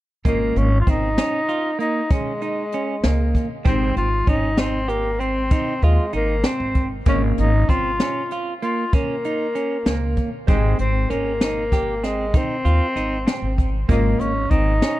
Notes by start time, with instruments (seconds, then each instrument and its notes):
0.25 upright bass G#1, hollow-body jazz guitar G#3 C#4 F4 C5 D#5, clean electric guitar A#3, tenor saxophone A#3, kick, closed hi-hat
0.56 upright bass G#1, tenor saxophone C#4, closed hi-hat
0.80 tenor saxophone F4
0.87 upright bass G#1, clean electric guitar C4, tenor saxophone D#4, kick, closed hi-hat
1.18 clean electric guitar C#4, snare, closed hi-hat
1.49 clean electric guitar F4, closed hi-hat
1.79 clean electric guitar A#3, tenor saxophone D#4, closed hi-hat
2.10 tenor saxophone G#3, clean electric guitar C#4, kick, closed hi-hat
2.41 clean electric guitar D#4, closed hi-hat
2.72 clean electric guitar C#4, closed hi-hat
3.04 upright bass C#2, clean electric guitar A#3, snare, closed hi-hat
3.35 kick, closed hi-hat
3.64 upright bass G#1, hollow-body jazz guitar G#3 D#4 G4 C5, clean electric guitar C4, tenor saxophone C4, kick, closed hi-hat
3.97 upright bass G#1, tenor saxophone F4, closed hi-hat
4.27 upright bass G#1, clean electric guitar C#4, tenor saxophone D#4, kick, closed hi-hat
4.57 tenor saxophone C4, clean electric guitar D#4, snare, closed hi-hat
4.88 tenor saxophone A#3, clean electric guitar G4, closed hi-hat
5.20 tenor saxophone C4, clean electric guitar C4, closed hi-hat
5.51 clean electric guitar D#4, kick, closed hi-hat
5.82 upright bass D#2, tenor saxophone G#3, clean electric guitar F4, closed hi-hat
6.13 upright bass G#1, tenor saxophone A#3, clean electric guitar D#4, closed hi-hat
6.44 clean electric guitar C4, tenor saxophone C4, snare, closed hi-hat
6.60 upright bass G#1
6.75 kick, closed hi-hat
7.06 upright bass G#1, hollow-body jazz guitar G#3 C#4 F4 C5 D#5, clean electric guitar A#3, tenor saxophone C#4, kick, closed hi-hat
7.38 upright bass G#1, tenor saxophone D#4, closed hi-hat
7.69 upright bass G#1, clean electric guitar C4, tenor saxophone F4, kick, closed hi-hat
8.00 clean electric guitar C#4, snare, closed hi-hat
8.31 clean electric guitar F4, closed hi-hat
8.62 clean electric guitar A#3, tenor saxophone F4, closed hi-hat
8.93 tenor saxophone A#3, clean electric guitar C#4, kick, closed hi-hat
9.24 clean electric guitar D#4, closed hi-hat
9.55 clean electric guitar C#4, closed hi-hat
9.86 upright bass C#2, clean electric guitar A#3, snare, closed hi-hat
10.17 kick, closed hi-hat
10.47 upright bass G#1, tenor saxophone G#3, hollow-body jazz guitar G#3 D#4 G4 C5, clean electric guitar C4, kick, closed hi-hat
10.79 upright bass G#1, tenor saxophone C4, closed hi-hat
11.10 upright bass G#1, tenor saxophone A#3, clean electric guitar C#4, closed hi-hat
11.41 clean electric guitar D#4, snare, closed hi-hat
11.72 clean electric guitar G4, kick, snare, closed hi-hat
12.03 tenor saxophone G#3, clean electric guitar C4, snare, closed hi-hat
12.34 tenor saxophone C4, clean electric guitar D#4, kick, closed hi-hat
12.65 upright bass D#2, clean electric guitar F4, closed hi-hat
12.96 upright bass G#1, clean electric guitar D#4, closed hi-hat
13.27 clean electric guitar C4, snare, closed hi-hat
13.42 upright bass G#1
13.58 kick, closed hi-hat
13.88 upright bass G#1, hollow-body jazz guitar G#3 C#4 F4 C5 D#5, clean electric guitar A#3, tenor saxophone A#3, kick, closed hi-hat
14.20 upright bass G#1, tenor saxophone C#4, closed hi-hat
14.50 upright bass G#1, clean electric guitar C4, tenor saxophone D#4, kick, closed hi-hat
14.82 clean electric guitar C#4, snare, closed hi-hat